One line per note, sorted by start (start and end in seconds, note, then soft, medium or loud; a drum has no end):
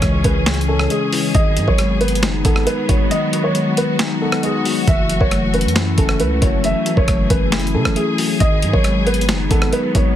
0.00 0.23 C#2 loud
0.00 0.68 C#3 loud
0.00 1.12 E3 medium
0.00 1.31 E3 medium
0.00 0.02 G#3 loud
0.00 0.89 G#3 medium
0.00 0.24 C#4 medium
0.00 1.31 C#4 medium
0.00 3.07 G#4 medium
0.00 0.22 C#5 medium
0.00 kick loud
0.00 cross-stick medium
0.00 closed hi-hat medium
0.00 downlifter medium
0.24 0.88 C#2 loud
0.24 0.67 C#4 medium
0.24 0.43 B4 medium
0.24 kick loud
0.24 closed hi-hat medium
0.46 1.35 C#5 loud
0.46 finger snap medium
0.46 snare loud
0.46 closed hi-hat soft
0.54 closed hi-hat medium
0.61 closed hi-hat medium
0.68 1.35 C#4 medium
0.68 0.87 A4 medium
0.79 cross-stick medium
0.90 1.35 G#3 medium
0.90 1.32 G#4 medium
0.90 closed hi-hat medium
1.12 1.35 E3 medium
1.12 open hi-hat medium
1.35 1.58 G#1 loud
1.35 2.45 D#3 loud
1.35 4.84 F#3 medium
1.35 4.84 B3 medium
1.35 1.66 D#5 loud
1.35 kick loud
1.35 closed hi-hat medium
1.57 1.67 G#2 loud
1.57 2.67 F#3 medium
1.57 closed hi-hat medium
1.68 2.24 G#1 loud
1.68 1.99 C#5 medium
1.68 kick loud
1.78 2.66 G#3 medium
1.78 cross-stick medium
1.78 closed hi-hat medium
2.01 2.44 B3 medium
2.01 2.19 B4 medium
2.01 closed hi-hat soft
2.08 closed hi-hat medium
2.15 closed hi-hat medium
2.23 2.44 F#1 loud
2.23 3.33 D#4 loud
2.23 finger snap medium
2.23 snare loud
2.23 closed hi-hat medium
2.45 2.66 G#1 loud
2.45 3.55 B3 medium
2.45 2.63 A4 medium
2.45 kick loud
2.45 closed hi-hat medium
2.56 cross-stick medium
2.66 3.54 G#3 medium
2.66 2.85 B4 medium
2.66 closed hi-hat medium
2.88 3.10 G#1 loud
2.88 3.32 F#3 medium
2.88 3.07 C#5 medium
2.88 kick loud
2.88 closed hi-hat medium
3.11 4.21 D#3 loud
3.11 6.60 F#4 medium
3.11 3.42 D#5 loud
3.11 closed hi-hat medium
3.33 4.43 F#3 medium
3.33 closed hi-hat medium
3.44 3.75 C#5 medium
3.55 4.42 G#3 medium
3.55 closed hi-hat medium
3.77 4.20 B3 medium
3.77 3.96 B4 medium
3.77 closed hi-hat medium
3.99 4.88 D#4 loud
3.99 finger snap medium
3.99 snare loud
3.99 closed hi-hat medium
4.21 4.87 B3 medium
4.21 4.40 A4 medium
4.32 cross-stick medium
4.43 4.87 G#3 medium
4.43 4.85 G#4 medium
4.43 closed hi-hat medium
4.65 4.87 F#3 medium
4.65 open hi-hat medium
4.87 5.19 F#1 loud
4.87 5.98 E3 loud
4.87 8.37 E3 medium
4.87 8.37 A3 medium
4.87 5.19 E5 loud
4.87 kick loud
4.87 closed hi-hat medium
5.10 6.20 F#3 medium
5.10 closed hi-hat medium
5.21 5.66 F#1 loud
5.21 5.52 C#5 medium
5.21 kick loud
5.31 6.19 A3 medium
5.31 cross-stick medium
5.31 closed hi-hat medium
5.54 5.97 C#4 medium
5.54 5.72 B4 medium
5.54 closed hi-hat soft
5.61 5.96 F#2 loud
5.61 closed hi-hat medium
5.68 closed hi-hat medium
5.76 6.86 E4 medium
5.76 finger snap medium
5.76 snare loud
5.76 closed hi-hat medium
5.98 6.21 F#1 loud
5.98 7.08 C#4 medium
5.98 6.16 A4 medium
5.98 kick loud
5.98 closed hi-hat medium
6.09 cross-stick medium
6.20 6.41 C#2 loud
6.20 7.07 A3 loud
6.20 6.38 B4 medium
6.20 closed hi-hat medium
6.42 6.74 F#1 loud
6.42 6.85 F#3 medium
6.42 6.60 C#5 medium
6.42 kick loud
6.42 closed hi-hat medium
6.64 7.74 E3 loud
6.64 10.13 G#4 medium
6.64 6.95 E5 loud
6.64 closed hi-hat medium
6.86 7.96 F#3 medium
6.86 closed hi-hat medium
6.97 7.08 F#1 loud
6.97 7.28 C#5 medium
6.97 kick loud
7.08 7.29 F#1 loud
7.08 7.95 A3 medium
7.08 kick loud
7.08 cross-stick medium
7.08 closed hi-hat medium
7.30 7.76 F#1 loud
7.30 7.73 C#4 medium
7.30 7.49 B4 medium
7.30 kick loud
7.30 closed hi-hat medium
7.52 8.40 E4 loud
7.52 finger snap medium
7.52 snare loud
7.52 closed hi-hat soft
7.59 closed hi-hat medium
7.67 closed hi-hat medium
7.74 7.87 C#3 loud
7.74 8.40 C#4 medium
7.74 7.93 A4 medium
7.85 7.96 F#1 loud
7.85 cross-stick medium
7.96 8.40 A3 loud
7.96 8.38 G#4 medium
7.96 closed hi-hat medium
8.18 8.40 F#3 medium
8.18 open hi-hat medium
8.40 8.64 G#1 loud
8.40 9.51 D#3 loud
8.40 10.16 F#3 medium
8.40 10.16 B3 medium
8.40 8.71 D#5 loud
8.40 kick loud
8.40 closed hi-hat medium
8.62 8.73 G#2 loud
8.62 9.73 F#3 medium
8.62 closed hi-hat medium
8.73 9.30 G#1 loud
8.73 9.04 C#5 medium
8.73 kick medium
8.84 9.72 G#3 loud
8.84 cross-stick medium
8.84 closed hi-hat medium
9.07 9.50 B3 medium
9.07 9.25 B4 medium
9.07 closed hi-hat soft
9.14 closed hi-hat medium
9.21 closed hi-hat medium
9.29 9.50 F#1 loud
9.29 10.16 D#4 loud
9.29 finger snap medium
9.29 snare loud
9.29 closed hi-hat medium
9.51 9.72 G#1 loud
9.51 10.16 B3 medium
9.51 9.69 A4 medium
9.51 kick loud
9.51 closed hi-hat medium
9.62 cross-stick medium
9.73 10.16 G#3 loud
9.73 9.91 B4 medium
9.73 closed hi-hat medium
9.95 10.16 G#1 loud
9.95 10.16 F#3 medium
9.95 10.14 C#5 medium
9.95 kick loud
9.95 closed hi-hat medium